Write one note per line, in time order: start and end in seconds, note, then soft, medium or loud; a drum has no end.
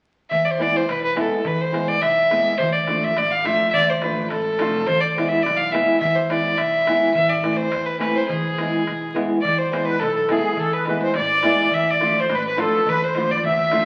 0.30 0.65 E2 medium
0.30 0.47 E5 medium
0.30 darbuka dum medium
0.45 0.52 D5 soft
0.45 darbuka tek soft
0.51 0.63 C5 medium
0.58 0.81 E3 medium
0.58 0.81 G#3 soft
0.58 0.81 B3 medium
0.58 0.81 E4 medium
0.58 0.78 D5 medium
0.58 darbuka tek medium
0.76 0.93 C5 medium
0.88 1.22 B1 medium
0.88 1.03 B4 medium
0.88 darbuka tek medium
1.04 1.17 B4 medium
1.15 1.38 E3 medium
1.15 1.38 G#3 medium
1.15 1.38 B3 medium
1.15 1.38 E4 medium
1.15 darbuka tek medium
1.21 1.49 A4 medium
1.31 darbuka tek soft
1.45 1.80 E2 medium
1.45 1.63 B4 medium
1.45 darbuka dum medium
1.60 1.89 C5 medium
1.60 darbuka tek soft
1.72 1.95 E3 medium
1.72 1.95 G#3 medium
1.72 1.95 B3 soft
1.72 1.95 E4 medium
1.72 darbuka tek medium
1.88 2.03 D5 medium
2.01 2.37 B1 medium
2.01 2.59 E5 medium
2.01 darbuka tek medium
2.30 2.52 E3 medium
2.30 2.53 G#3 medium
2.30 2.53 B3 medium
2.30 2.53 E4 medium
2.30 darbuka tek medium
2.46 darbuka tek soft
2.58 2.94 D2 medium
2.58 2.74 C5 medium
2.58 darbuka dum medium
2.72 3.05 D5 medium
2.72 darbuka tek soft
2.87 3.09 F3 medium
2.87 3.10 A3 medium
2.87 3.10 D4 soft
2.87 3.10 F4 medium
2.87 darbuka tek medium
3.04 3.20 E5 medium
3.17 3.52 A1 medium
3.17 3.32 D5 medium
3.17 darbuka tek medium
3.31 3.47 F5 medium
3.44 3.66 F3 medium
3.44 3.66 A3 medium
3.44 3.66 D4 medium
3.44 3.67 F4 medium
3.44 3.70 E5 medium
3.44 darbuka tek medium
3.71 3.91 D5 loud
3.71 3.75 E5 medium
3.71 darbuka dum loud
3.75 3.92 D2 medium
3.88 4.05 C5 medium
3.88 darbuka tek soft
4.02 4.28 A1 medium
4.02 4.24 F3 medium
4.02 4.24 A3 soft
4.02 4.24 D4 soft
4.02 4.25 F4 medium
4.02 4.29 B4 medium
4.02 darbuka tek medium
4.30 4.57 G#1 medium
4.30 4.88 A4 medium
4.30 darbuka tek medium
4.59 4.86 F1 medium
4.59 4.81 F3 medium
4.59 4.81 A3 medium
4.59 4.81 D4 medium
4.59 4.82 F4 medium
4.59 darbuka tek medium
4.74 darbuka tek soft
4.87 5.22 E2 medium
4.87 5.02 C5 loud
4.87 darbuka dum loud
5.00 5.30 D5 medium
5.00 darbuka tek soft
5.17 5.38 E3 medium
5.17 5.38 G#3 medium
5.17 5.38 B3 medium
5.17 5.39 E4 medium
5.17 darbuka tek medium
5.28 5.44 E5 medium
5.43 5.80 B1 medium
5.43 5.58 D5 medium
5.43 darbuka tek medium
5.56 5.73 F5 medium
5.72 5.94 E3 medium
5.72 5.95 G#3 medium
5.72 5.95 B3 medium
5.72 5.95 E4 medium
5.72 6.00 E5 medium
5.72 darbuka tek medium
5.89 darbuka tek soft
6.00 6.37 E2 medium
6.00 6.17 E5 medium
6.00 darbuka dum medium
6.15 6.33 C5 medium
6.29 6.51 E3 medium
6.29 6.51 G#3 soft
6.29 6.51 B3 medium
6.29 6.52 E4 medium
6.29 6.59 D5 medium
6.29 darbuka tek medium
6.57 6.93 B1 medium
6.57 7.13 E5 medium
6.57 darbuka tek medium
6.87 7.08 E3 medium
6.87 7.09 G#3 medium
6.87 7.09 B3 medium
6.87 7.09 E4 medium
6.87 darbuka tek medium
7.01 darbuka tek soft
7.14 7.50 A1 medium
7.14 7.31 E5 medium
7.14 darbuka dum medium
7.29 7.58 D5 medium
7.29 darbuka tek soft
7.43 7.65 E3 medium
7.43 7.65 A3 medium
7.43 7.66 C4 soft
7.43 7.66 E4 medium
7.43 darbuka tek medium
7.57 7.87 C5 medium
7.72 8.08 E2 medium
7.72 darbuka tek medium
7.85 7.99 B4 medium
7.99 8.22 E3 medium
7.99 8.22 A3 medium
7.99 8.22 C4 medium
7.99 8.22 E4 medium
7.99 8.16 B4 medium
7.99 darbuka tek medium
8.15 8.23 B4 medium
8.15 8.20 C5 medium
8.15 darbuka tek soft
8.21 8.30 C5 medium
8.28 8.64 E1 medium
8.28 9.14 G#4 medium
8.28 darbuka dum loud
8.44 darbuka tek soft
8.58 8.80 E3 medium
8.58 8.80 G#3 medium
8.58 8.80 B3 soft
8.58 8.81 E4 medium
8.58 darbuka tek medium
8.87 9.21 B1 medium
8.87 darbuka tek medium
9.02 darbuka tek soft
9.14 9.36 E3 medium
9.14 9.36 G#3 medium
9.14 9.37 B3 medium
9.14 9.37 E4 medium
9.14 darbuka tek medium
9.41 9.78 E2 medium
9.41 9.60 D5 medium
9.41 darbuka dum medium
9.46 9.58 D5 medium
9.58 9.87 C5 medium
9.72 9.93 E3 medium
9.72 9.94 G#3 soft
9.72 9.94 B3 soft
9.72 9.94 E4 medium
9.72 darbuka tek medium
9.85 10.01 B4 medium
9.99 10.35 B1 loud
9.99 10.14 A4 medium
9.99 darbuka tek medium
10.15 10.33 A4 medium
10.15 10.29 A4 medium
10.29 10.51 E3 medium
10.29 10.51 G#3 medium
10.29 10.51 B3 medium
10.29 10.52 E4 medium
10.29 10.59 G#4 medium
10.29 10.61 G#4 medium
10.29 darbuka tek medium
10.43 darbuka tek soft
10.57 10.92 E2 medium
10.57 10.73 A4 medium
10.57 10.74 A4 medium
10.57 darbuka dum medium
10.72 11.01 B4 medium
10.72 11.02 B4 medium
10.72 darbuka tek soft
10.85 11.08 E3 medium
10.85 11.08 G#3 medium
10.85 11.09 B3 soft
10.85 darbuka tek medium
10.89 11.09 E4 medium
11.02 11.14 C5 medium
11.02 11.15 C5 medium
11.14 11.49 A1 loud
11.14 11.75 D5 medium
11.14 11.69 D5 medium
11.14 darbuka tek medium
11.43 11.64 E3 medium
11.43 11.65 G#3 medium
11.43 11.65 B3 medium
11.43 11.65 E4 medium
11.43 darbuka tek medium
11.57 darbuka tek soft
11.71 12.07 D2 medium
11.71 11.92 E5 medium
11.71 11.87 E5 medium
11.71 darbuka dum medium
11.87 12.17 D5 medium
11.87 12.21 D5 medium
11.87 darbuka tek soft
12.00 12.22 F3 medium
12.00 12.22 A3 medium
12.00 12.22 D4 soft
12.00 12.23 F4 medium
12.00 darbuka tek medium
12.18 12.30 C5 medium
12.18 12.36 C5 medium
12.30 12.64 A1 loud
12.30 12.44 B4 medium
12.30 darbuka tek medium
12.35 12.46 B4 medium
12.47 12.62 B4 medium
12.47 12.58 B4 medium
12.56 12.78 F3 medium
12.56 12.78 A3 medium
12.56 12.79 D4 medium
12.56 12.79 F4 medium
12.56 12.90 A4 medium
12.56 darbuka tek medium
12.61 12.87 A4 medium
12.72 darbuka tek soft
12.86 13.20 D2 medium
12.86 13.05 B4 loud
12.86 13.02 B4 medium
12.86 darbuka dum medium
13.00 13.32 C5 medium
13.00 darbuka tek soft
13.05 13.31 C5 medium
13.15 13.36 F3 soft
13.15 13.36 A3 medium
13.15 13.36 D4 soft
13.15 13.37 F4 medium
13.15 darbuka tek medium
13.29 13.44 D5 medium
13.29 13.45 D5 medium
13.29 darbuka dum medium
13.44 13.78 D2 medium
13.44 13.85 E5 medium
13.44 darbuka dum medium
13.56 darbuka dum medium
13.71 13.85 F3 medium
13.71 13.85 A3 medium
13.71 13.85 D4 medium
13.71 13.85 F4 medium
13.71 darbuka tek medium